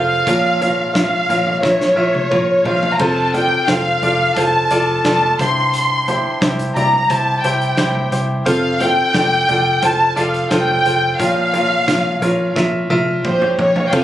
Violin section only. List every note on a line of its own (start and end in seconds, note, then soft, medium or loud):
0.00 0.90 F5 medium
0.95 1.59 F5 medium
1.63 2.66 C#5 medium
2.66 2.93 F5 medium
2.93 3.00 A#5 medium
2.99 3.34 A5 medium
3.34 3.66 G5 medium
3.68 4.37 F5 medium
4.37 5.05 A5 medium
5.06 5.37 A5 medium
5.41 6.38 C6 medium
6.75 7.07 A#5 medium
7.09 7.44 A5 medium
7.41 8.11 G5 medium
8.47 8.79 F5 medium
8.81 9.83 G5 loud
9.85 10.18 A5 loud
10.19 10.52 F5 medium
10.52 11.16 G5 medium
11.21 12.57 F5 medium
13.25 13.57 C5 medium
13.59 13.84 C#5 medium
13.87 13.94 G5 medium
13.92 14.04 F5 medium